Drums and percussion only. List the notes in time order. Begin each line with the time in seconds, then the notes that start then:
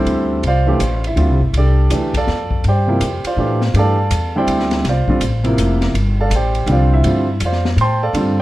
0.07 ride
0.43 ride
0.80 hi-hat pedal, ride
1.04 ride
1.17 ride
1.54 ride
1.90 hi-hat pedal, ride
2.14 kick, ride
2.27 snare
2.51 kick
2.64 ride
3.01 hi-hat pedal, ride
3.25 ride
3.61 snare
3.74 ride
4.11 hi-hat pedal, ride
4.48 ride
4.60 snare
4.71 snare, ride
4.84 snare, ride
5.08 kick
5.21 hi-hat pedal, ride
5.44 ride
5.58 hi-hat pedal, ride
5.81 snare, ride
5.95 ride
6.31 hi-hat pedal, ride
6.55 ride
6.67 ride
7.04 ride
7.40 hi-hat pedal, ride
7.52 snare
7.65 snare
7.78 ride
8.14 ride